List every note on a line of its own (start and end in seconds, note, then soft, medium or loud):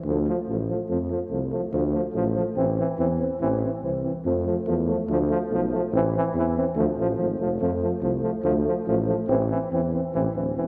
0.04 0.28 D2 loud
0.09 0.16 F3 medium
0.09 0.17 A3 medium
0.28 0.36 F3 medium
0.28 0.36 A3 medium
0.47 0.71 A1 medium
0.47 0.57 F3 medium
0.47 0.58 A3 medium
0.69 0.77 F3 medium
0.69 0.79 A3 medium
0.89 1.13 F2 medium
0.89 0.98 F3 medium
0.89 0.97 A3 medium
1.08 1.19 F3 medium
1.08 1.17 A3 medium
1.30 1.54 C2 medium
1.30 1.40 F3 medium
1.30 1.38 A3 medium
1.51 1.61 F3 medium
1.51 1.60 A3 medium
1.72 1.96 D2 loud
1.72 1.81 F3 medium
1.72 1.81 A3 medium
1.93 2.02 F3 medium
1.93 2.01 A3 medium
2.13 2.38 A1 medium
2.13 2.24 F3 medium
2.13 2.22 A3 medium
2.35 2.44 F3 medium
2.35 2.45 A3 medium
2.56 2.80 A1 medium
2.56 2.66 E3 medium
2.56 2.65 C4 medium
2.76 2.87 E3 medium
2.76 2.85 C4 medium
2.98 3.22 E2 medium
2.98 3.07 E3 medium
2.98 3.07 C4 medium
3.18 3.27 E3 medium
3.18 3.29 C4 medium
3.40 3.64 A1 loud
3.40 3.49 E3 medium
3.40 3.50 C4 medium
3.61 3.71 E3 medium
3.61 3.70 C4 medium
3.81 4.06 C2 medium
3.81 3.92 E3 medium
3.81 3.90 C4 medium
4.04 4.13 E3 medium
4.04 4.12 C4 medium
4.25 4.48 F2 medium
4.25 4.34 F3 medium
4.25 4.33 A3 medium
4.45 4.55 F3 medium
4.45 4.54 A3 medium
4.66 4.91 E2 medium
4.66 4.76 F3 medium
4.66 4.75 A3 medium
4.87 4.98 F3 medium
4.87 4.96 A3 medium
5.08 5.32 D2 loud
5.08 5.19 F3 medium
5.08 5.16 A3 medium
5.29 5.39 F3 medium
5.29 5.37 A3 medium
5.49 5.74 B1 medium
5.49 5.58 A3 medium
5.53 5.61 F3 medium
5.71 5.82 F3 medium
5.71 5.80 A3 medium
5.93 6.16 A1 loud
5.93 6.03 E3 medium
5.93 6.01 C4 medium
6.15 6.24 E3 medium
6.15 6.23 C4 medium
6.34 6.57 E2 medium
6.34 6.44 C4 medium
6.38 6.46 E3 medium
6.56 6.65 E3 medium
6.56 6.65 C4 medium
6.76 6.88 D2 loud
6.76 6.86 F3 medium
6.76 6.85 A3 medium
6.96 7.16 A1 medium
6.96 7.07 A3 medium
7.00 7.08 F3 medium
7.18 7.38 G#1 medium
7.18 7.26 F3 medium
7.18 7.29 A3 soft
7.39 7.59 F1 medium
7.39 7.50 F3 medium
7.39 7.48 A3 soft
7.61 7.85 F2 loud
7.61 7.71 F3 medium
7.61 7.69 A3 medium
7.82 7.91 F3 medium
7.82 7.91 A3 medium
8.02 8.26 C2 medium
8.02 8.11 F3 medium
8.02 8.12 A3 medium
8.22 8.31 F3 medium
8.22 8.31 A3 medium
8.43 8.67 D2 medium
8.43 8.53 F3 medium
8.43 8.54 A3 medium
8.64 8.75 F3 medium
8.64 8.73 A3 medium
8.87 9.11 A1 medium
8.87 8.96 F3 medium
8.87 8.97 A3 medium
9.07 9.16 F3 medium
9.07 9.16 A3 medium
9.28 9.52 A1 loud
9.28 9.38 E3 medium
9.28 9.37 C4 medium
9.50 9.59 E3 medium
9.50 9.59 C4 medium
9.71 9.95 E2 medium
9.71 9.81 E3 medium
9.71 9.80 C4 medium
9.93 10.01 E3 medium
9.93 10.01 C4 medium
10.13 10.26 A1 loud
10.13 10.22 E3 medium
10.13 10.23 C4 medium
10.34 10.54 D1 medium
10.34 10.44 E3 medium
10.34 10.43 C4 medium
10.56 10.67 E1 medium
10.56 10.65 E3 medium
10.56 10.64 C4 medium